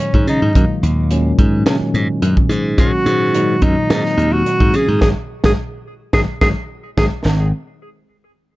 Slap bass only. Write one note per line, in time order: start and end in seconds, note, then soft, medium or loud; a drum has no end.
0.14 0.26 G#2 medium
0.27 0.40 C#3 medium
0.42 0.54 G#2 medium
0.56 0.68 F#2 medium
0.83 1.32 D#2 medium
1.38 1.63 G#2 medium
1.66 1.79 C#3 medium
1.81 muted slap bass stroke soft
1.94 2.07 G#2 medium
2.22 2.35 F#2 loud
2.49 2.74 G#2 loud
2.78 2.91 G#2 medium
3.06 3.55 G#2 medium
3.62 3.75 F#2 medium
3.90 4.03 G#2 loud
4.17 4.42 D#2 medium
4.61 4.72 G#2 medium
4.74 4.87 C#3 medium
4.88 5.00 G#2 medium
5.02 5.13 G#1 loud
5.44 5.54 G#1 medium
6.14 6.25 G#1 loud
6.42 6.53 G#1 loud
6.98 7.08 G#1 loud
7.25 7.51 G#1 medium